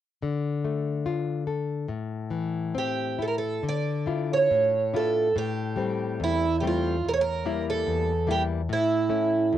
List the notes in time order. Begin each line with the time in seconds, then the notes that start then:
0.23 D3
0.65 A3
1.06 F4
1.47 A4
1.88 A2
2.30 E3
2.75 C4 G4
3.19 E4 A4
3.28 A#4
3.38 A4
3.63 D3
3.69 D5
4.06 D4 E4 F4
4.33 C#5
4.51 A2
4.93 D4 E4 F4 A4
5.36 A2 G4
5.76 G3 A3 C4
6.20 E2 E4
6.60 G3 A3 C4 G4
6.67 F4
7.09 A#4
7.13 C#5
7.21 A#4
7.45 G3 A#3 E4
7.70 A4
7.87 E2
8.27 G3 A#3 E4 G4
8.69 A2 E4
9.09 A3 C#4 E4
9.53 E2